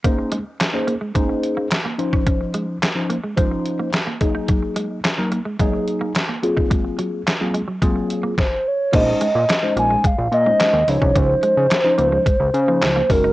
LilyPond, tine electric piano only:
\new Staff \with { instrumentName = "Tine electric piano" } { \time 4/4 \key bes \minor \tempo 4 = 108 <bes des' ees' aes' c''>8 r8. <bes des' ees' aes' c''>16 r8 <bes des' ees' aes' c''>4 r8 <f des' ees' c''>8~ | <f des' ees' c''>4 r16 <f des' ees' c''>16 r8 <f des' ees' c''>4 r8 <ges bes ees' aes'>8~ | <ges bes ees' aes'>4 r16 <ges bes ees' bes'>16 r8 <ges bes ees' aes'>4 r8 <ges bes c' f' aes'>8~ | <ges bes c' f' aes'>4 r16 <ges bes c' f' aes'>16 r8 <ges bes c' f' aes'>4 r4 |
<aes des' ees' c''>8 r8. <aes des' ees' c''>8. r8. <aes des' ees' c''>8 r16 <f des' ees' c''>8~ | <f des' ees' c''>4 r16 <f des' ees' c''>8. r8. <f des' ees' c''>8 r16 <aes ees' ges' bes'>8 | }